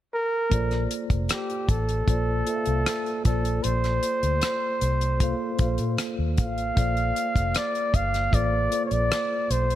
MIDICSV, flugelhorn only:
0, 0, Header, 1, 2, 480
1, 0, Start_track
1, 0, Key_signature, -2, "major"
1, 0, Tempo, 781250
1, 317, Time_signature, 4, 2, 24, 8
1, 5992, End_track
2, 0, Start_track
2, 0, Title_t, "Flugelhorn"
2, 0, Program_c, 0, 56
2, 81, Note_on_c, 0, 70, 97
2, 535, Note_off_c, 0, 70, 0
2, 805, Note_on_c, 0, 67, 68
2, 1042, Note_on_c, 0, 69, 86
2, 1051, Note_off_c, 0, 67, 0
2, 1991, Note_off_c, 0, 69, 0
2, 1995, Note_on_c, 0, 69, 81
2, 2231, Note_on_c, 0, 72, 95
2, 2240, Note_off_c, 0, 69, 0
2, 3674, Note_off_c, 0, 72, 0
2, 3924, Note_on_c, 0, 77, 92
2, 4648, Note_on_c, 0, 74, 85
2, 4658, Note_off_c, 0, 77, 0
2, 4885, Note_on_c, 0, 77, 94
2, 4895, Note_off_c, 0, 74, 0
2, 5125, Note_on_c, 0, 74, 93
2, 5135, Note_off_c, 0, 77, 0
2, 5435, Note_off_c, 0, 74, 0
2, 5438, Note_on_c, 0, 73, 61
2, 5484, Note_on_c, 0, 74, 88
2, 5493, Note_off_c, 0, 73, 0
2, 5844, Note_on_c, 0, 72, 85
2, 5854, Note_off_c, 0, 74, 0
2, 5992, Note_off_c, 0, 72, 0
2, 5992, End_track
0, 0, End_of_file